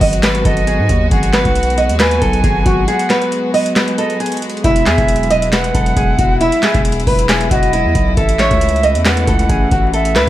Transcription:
Already playing: F#3 G#3 B3 F#4, downlifter
0.01 G#1 D#5, kick, open hi-hat
0.13 closed hi-hat
0.23 B4, snare, clap, closed hi-hat
0.35 closed hi-hat
0.45 G#1 A4 D#5, kick, closed hi-hat
0.57 closed hi-hat
0.67 G#4, closed hi-hat
0.79 G#2
0.89 D#2, kick, closed hi-hat
1.11 G#1 G#4 F#5, kick, closed hi-hat
1.23 closed hi-hat
1.33 B4, snare, clap, closed hi-hat
1.45 B1, kick, closed hi-hat
1.55 closed hi-hat
1.63 closed hi-hat
1.70 closed hi-hat
1.78 D#5, closed hi-hat
1.89 D#2, closed hi-hat
2.00 B4 G#5, snare, clap, closed hi-hat
2.11 closed hi-hat
2.22 B1 A4, kick, closed hi-hat
2.33 closed hi-hat
2.44 G#1 G#4, kick, closed hi-hat
2.66 G#1 F#4, kick, closed hi-hat
2.88 G#4 F#5, closed hi-hat
2.99 closed hi-hat
3.10 B4, snare, clap, closed hi-hat
3.22 closed hi-hat
3.32 closed hi-hat
3.54 D#5, open hi-hat
3.66 closed hi-hat
3.76 B4, snare, clap, closed hi-hat
3.88 closed hi-hat
3.98 A4 D#5, closed hi-hat
4.10 closed hi-hat
4.20 G#4, closed hi-hat
4.26 closed hi-hat
4.32 closed hi-hat
4.37 closed hi-hat
4.42 closed hi-hat
4.50 closed hi-hat
4.57 closed hi-hat
4.64 E1 E4 E5, kick, closed hi-hat
4.76 closed hi-hat
4.86 E2 G#4, snare, clap, closed hi-hat
4.98 E1, kick, closed hi-hat
5.08 closed hi-hat
5.16 closed hi-hat
5.23 closed hi-hat
5.30 D#5, closed hi-hat
5.42 closed hi-hat
5.52 B4 F#5, snare, clap, closed hi-hat
5.64 closed hi-hat
5.74 E1 A4, kick, closed hi-hat
5.86 closed hi-hat
5.97 E1 G#4, kick, closed hi-hat
6.19 E1 F#4, kick, closed hi-hat
6.41 E4 E5, closed hi-hat
6.52 closed hi-hat
6.63 G#4, snare, clap, closed hi-hat
6.74 E1, kick, closed hi-hat
6.85 closed hi-hat
6.92 closed hi-hat
7.00 closed hi-hat
7.07 E1 B4, kick, open hi-hat
7.19 closed hi-hat
7.29 G#4, snare, clap, closed hi-hat
7.41 closed hi-hat
7.51 E1 F#4 D#5, kick, closed hi-hat
7.63 closed hi-hat
7.73 E4, closed hi-hat
7.85 E2
7.95 B1, kick, closed hi-hat
8.17 A1 C#3 E3 A3 A4 E5, kick, closed hi-hat
8.29 closed hi-hat
8.39 C#5, snare, clap, closed hi-hat
8.51 C#2, kick, closed hi-hat
8.61 closed hi-hat
8.69 closed hi-hat
8.76 closed hi-hat
8.83 D#5, closed hi-hat
8.95 E2, closed hi-hat
9.05 B4 F#5, snare, clap, closed hi-hat
9.17 closed hi-hat
9.27 C#2 A4, kick, closed hi-hat
9.39 closed hi-hat
9.49 A1 G#4, kick, closed hi-hat
9.71 A1 F#4, kick, closed hi-hat
9.94 A4 E5, closed hi-hat
10.05 closed hi-hat
10.16 C#2 B4, snare, clap, closed hi-hat

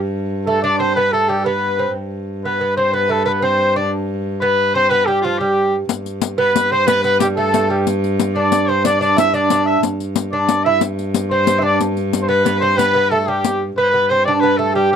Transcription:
Already playing: G2
0.47 A3 A4
0.63 D4 D5
0.79 C4 C5
0.95 B3 B4
1.12 A3 A4
1.29 G3 G4
1.44 B3 B4
1.79 C4
1.94 G2
2.44 B3 B4
2.61 B3
2.76 C4 C5
2.93 B3 B4
3.09 A3 A4
3.25 B3 B4
3.42 C4 C5
3.76 D4 D5
4.40 B3 B4
4.73 C4 C5
4.89 B3 B4
5.06 G3 G4
5.22 F3 F4
5.38 G3 G4
5.89 G2, riq
6.06 riq
6.22 riq
6.38 B3 B4
6.55 B4, riq
6.71 C4 C5
6.87 B3 B4, riq
7.04 B3 B4, riq
7.19 G3 G4, riq
7.36 A3 A4
7.54 A3, riq
7.70 G3 G4
7.87 riq
8.04 riq
8.20 riq
8.34 D4 D5
8.52 D5, riq
8.68 C4 C5
8.84 D4 D5, riq
9.01 D4 D5, riq
9.17 E4 E5, riq
9.34 D4 D5, riq
9.50 D4 D5, riq
9.66 E5
9.83 G2, riq
10.00 riq
10.16 riq
10.32 D4 D5
10.49 riq
10.65 E4 E5
10.81 riq
10.99 riq
11.14 riq
11.30 C4 C5
11.47 C4, riq
11.58 D4 E4 E5
11.63 D5
11.81 riq
11.97 riq
12.13 riq
12.22 C5
12.29 B3 B4
12.45 B3 B4, riq
12.60 C4 C5
12.77 B3 B4, riq
12.95 B3
13.11 A3 A4
13.26 G3 G4
13.44 riq
13.77 G2 B3 B4
13.83 C5
13.90 B4
13.94 B3
14.08 C4 C5
14.25 D4 D5
14.40 B3 B4
14.58 A3 A4
14.75 G3 G4
14.92 G4

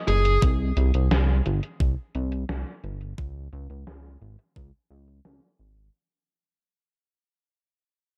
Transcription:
Already playing: D#5
0.08 F#1 G#4, closed hi-hat
0.25 closed hi-hat
0.42 C2, kick, closed hi-hat
0.77 C2, closed hi-hat
0.94 C2, closed hi-hat
1.11 C2, snare, closed hi-hat
1.46 G1, closed hi-hat
1.63 closed hi-hat
1.80 C2, kick, closed hi-hat
2.15 C2, closed hi-hat
2.32 closed hi-hat
2.49 C2, snare, closed hi-hat
2.84 G1, closed hi-hat
3.01 closed hi-hat
3.18 C#2, kick, closed hi-hat
3.53 C#2, closed hi-hat
3.70 C#2, closed hi-hat
3.87 C#2, snare, closed hi-hat
4.22 G#1, closed hi-hat
4.39 closed hi-hat
4.56 C#2, kick, closed hi-hat
4.91 C#2, closed hi-hat
5.08 closed hi-hat
5.25 C#2, snare, closed hi-hat
5.59 G#1, closed hi-hat
5.77 closed hi-hat

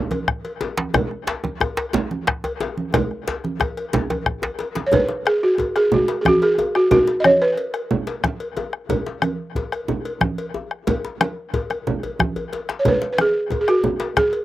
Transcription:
0.11 bombo rim, cowbell, high conga, djembe tone
0.28 bombo rim, bombo low
0.45 cowbell, high conga
0.61 cowbell, djembe slap, djembe tone, high conga
0.77 djembe slap, high conga
0.94 bombo rim, bombo low, cowbell, djembe tone, djembe bass, low conga
1.11 bombo rim
1.27 cowbell, djembe slap
1.44 bombo rim, djembe tone, high conga
1.61 bombo rim, bombo low, cowbell, djembe slap, djembe tone
1.77 cowbell, djembe slap
1.93 djembe slap, djembe tone, high conga, djembe bass, low conga
2.11 bombo rim, high conga
2.27 bombo rim, bombo low, djembe slap
2.44 cowbell, djembe tone, high conga
2.61 cowbell, djembe slap, djembe tone, high conga
2.77 high conga
2.94 bombo rim, bombo low, cowbell, djembe tone, low conga, djembe bass
3.11 bombo rim
3.27 bombo rim, cowbell, djembe slap, djembe tone
3.44 bombo rim, djembe slap, high conga
3.60 bombo rim, bombo low, cowbell, djembe tone
3.77 bombo rim, cowbell
3.93 bombo rim, djembe slap, high conga, djembe tone, djembe bass, low conga
4.10 cowbell, high conga, djembe tone
4.26 bombo rim, bombo low, djembe bass
4.42 cowbell, djembe slap, djembe bass
4.59 bombo rim, cowbell, djembe slap, high conga
4.75 bombo rim, djembe slap, high conga
4.87 C#5
4.92 B4, bombo rim, bombo low, cowbell, djembe bass, low conga
5.09 djembe slap, high conga
5.26 G#4, bombo rim, cowbell
5.43 F#4
5.58 bombo low, cowbell, djembe tone
5.76 G#4, bombo rim, cowbell
5.92 F#4, djembe bass, low conga
6.08 cowbell, djembe slap
6.21 G#4, high conga
6.26 F#4, bombo rim, bombo low
6.42 G#4, cowbell
6.58 cowbell, djembe tone, high conga
6.75 F#4, bombo rim
6.91 F#4, bombo rim, bombo low, cowbell, djembe bass, low conga
7.07 djembe slap
7.20 D#5
7.24 C#5, bombo rim, high conga
7.42 B4
7.57 cowbell
7.74 bombo rim, cowbell
7.91 low conga, djembe bass
8.07 cowbell, djembe slap
8.24 bombo rim, bombo low, high conga
8.40 cowbell
8.57 cowbell, high conga, djembe tone
8.73 bombo rim
8.89 bombo rim, bombo low, cowbell, djembe bass, low conga
9.06 djembe slap, high conga
9.22 bombo rim, cowbell, high conga
9.55 bombo low, cowbell, djembe tone
9.72 bombo rim, cowbell
9.88 low conga, djembe bass
10.05 cowbell
10.21 bombo rim, bombo low, djembe slap, high conga
10.38 cowbell
10.54 djembe tone, high conga
10.71 bombo rim
10.87 bombo low, cowbell, low conga, djembe bass
11.05 djembe slap
11.21 bombo rim, cowbell, high conga
11.54 bombo rim, bombo low, cowbell, djembe tone
11.70 bombo rim, cowbell, high conga
11.87 low conga, djembe bass
12.03 cowbell, djembe bass
12.19 bombo rim, bombo low, high conga, djembe bass
12.36 cowbell, djembe bass
12.52 bombo rim, cowbell, djembe slap
12.69 bombo rim, djembe slap
12.79 C#5
12.85 B4, bombo rim, bombo low, cowbell, low conga, djembe bass
13.02 djembe slap, high conga
13.13 B4
13.18 G#4, bombo rim, cowbell, high conga
13.50 bombo low, cowbell, djembe tone
13.61 G#4
13.68 F#4, bombo rim, cowbell
13.84 djembe bass, low conga
14.00 cowbell, djembe slap
14.16 G#4, bombo rim, bombo low, djembe slap, high conga
14.33 cowbell

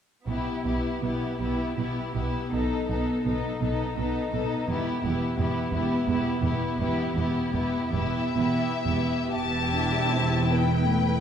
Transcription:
0.27 B1 B2 B3 E4 G4
0.64 B1 B2 B3 E4 G4
1.02 B1 B2 B3 E4 G4
1.39 B1 B2 B3 E4 G4
1.77 B1 B2 B3 E4 G4
2.14 B1 B2 B3 E4 G4
2.51 B1 B2 B3 D#4 A4
2.88 B1 B2 B3 D#4 A4
3.24 B1 B2 B3 D#4 A4
3.61 B1 B2 B3 D#4 A4
3.96 B1 B2 B3 D#4 A4
4.32 B1 B2 B3 D#4 A4
4.68 E1 E2 B3 E4 G4
5.03 E1 E2 B3 E4 G4
5.37 E1 E2 B3 E4 G4
5.72 E1 E2 B3 E4 G4
6.06 E1 E2 B3 E4 G4
6.42 E1 E2 B3 E4 G4
6.78 E1 E2 B3 E4 G4
7.15 E1 E2 B3 E4 G4
7.52 E1 E2 B3 E4 G4
7.91 E1 E2 B3 E4 G4 E5
8.35 E1 E2 B3 E4 G4
8.86 E1 E2 B3 E4 G4
9.32 E1 E2 B3 E4 G4 E5 A5
9.73 D4
10.12 C4
10.49 B3 B4 G5
10.86 A3

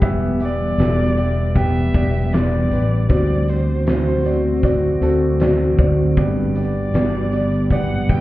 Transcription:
Already playing: G3 B3 G4 G5
0.01 E1 E3 B3 G4 E5, kick, closed hi-hat
0.40 B3 G4 D5 E5, closed hi-hat
0.78 E1 B3 G4 A4, snare, closed hi-hat
1.17 B3 G4 E5, closed hi-hat
1.54 B3 G4 E5 G5, kick, closed hi-hat
1.94 E1 B3 G4 D5, kick, closed hi-hat
2.32 B3 G4 D5, snare, closed hi-hat
2.71 A1 B3 G4 B4, closed hi-hat
3.09 D2 D3 A3 C4 F#4 D5, kick, closed hi-hat
3.47 C4 F#4 C5 D5, closed hi-hat
3.86 C4 F#4 C5, snare, closed hi-hat
4.25 C4 F#4 D5, closed hi-hat
4.63 C4 F#4 D5, kick, closed hi-hat
5.01 D2 C4 F#4 A4, closed hi-hat
5.39 C4 F#4 D5, snare, closed hi-hat
5.78 D2 C4 F#4 D5, kick, closed hi-hat
6.17 G1 G2 G3 B3 G4 D5, kick, closed hi-hat
6.55 B3 G4 D5, closed hi-hat
6.94 G1 B3 G4 D5, snare, closed hi-hat
7.32 B3 G4 D5, closed hi-hat
7.70 B3 G4 D5 F#5, kick, closed hi-hat
8.09 G1 B3 G4 E5 G5, kick, closed hi-hat

